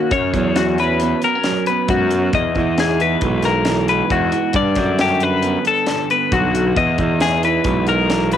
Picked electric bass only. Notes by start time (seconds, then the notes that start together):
0.12 F#2
0.34 E2
1.89 F#2
2.34 E2
2.56 E2
3.22 B1
4.11 E2
4.54 G2
4.77 F#2
6.33 B1
6.77 E2
6.99 E2
7.64 B1